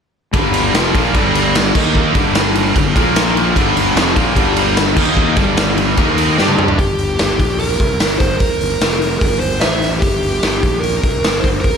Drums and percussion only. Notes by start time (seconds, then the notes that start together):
0.34 kick, ride
0.54 ride
0.74 snare, ride
0.95 kick, ride
1.14 kick, ride
1.35 ride
1.55 snare, ride
1.75 kick, crash
1.95 kick
2.15 kick, ride
2.35 snare, ride
2.55 ride
2.76 kick, ride
2.96 kick, ride
3.16 snare, ride
3.37 ride
3.56 kick, ride
3.77 ride
3.97 snare, ride
4.16 kick, ride
4.36 kick, ride
4.57 ride
4.77 snare, ride
4.97 kick, crash
5.17 kick
5.37 kick, ride
5.57 snare, ride
5.78 ride
5.97 kick, ride
6.18 ride
6.38 snare
6.48 high tom
6.59 mid tom
6.68 floor tom
6.79 kick, open hi-hat
6.98 open hi-hat
7.19 snare, open hi-hat
7.39 kick, open hi-hat
7.60 open hi-hat
7.80 kick, open hi-hat
8.00 snare, open hi-hat
8.20 kick, snare, open hi-hat
8.40 kick, open hi-hat
8.61 open hi-hat
8.81 snare, open hi-hat
9.02 open hi-hat
9.21 kick, open hi-hat
9.42 open hi-hat
9.61 snare, open hi-hat
9.82 snare, open hi-hat
10.02 kick, open hi-hat
10.23 open hi-hat
10.43 snare, open hi-hat
10.63 kick, open hi-hat
10.84 open hi-hat
11.03 kick, open hi-hat
11.24 snare, open hi-hat
11.44 kick, open hi-hat
11.64 kick, open hi-hat